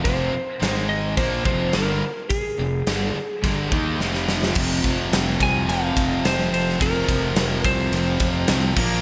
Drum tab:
CC |----------------|----------------|x---------------|--------------x-|
RD |----------------|----------------|--x-x-x-x-x-x-x-|x-x-x-x-x-x-x---|
HH |o---o---o---o---|o---o---o-------|----------------|----------------|
SD |----o-------o---|----o-------oooo|----o-------oo-o|----o-------o---|
BD |o-------o-o-----|o-------o-o-----|o-o---o---o-----|o-o---o---o---o-|